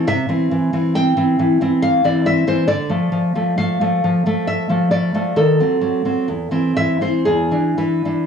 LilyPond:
\new Staff \with { instrumentName = "Nylon-string guitar" } { \time 3/4 \key d \dorian \tempo 4 = 67 << { e''4 g''4 f''16 d''16 e''16 c''16 | d''4 f''4 e''8 d''8 | a'4. e''16 c''16 gis'8 b'8 | } \\ { c16 <e c'>16 e16 <e c'>16 c'16 <e c'>16 e16 <e c'>8 <e c'>16 c'16 <e c'>16 | d16 <f a>16 f16 <f a>16 a16 <f a>16 f16 <f a>8 <f a>16 a16 <f a>16 | dis16 <fis bis>16 fis16 <fis bis>16 e,16 <e c'>16 e16 <e c'>16 e,16 <e d'>16 e16 <e d'>16 | } >> }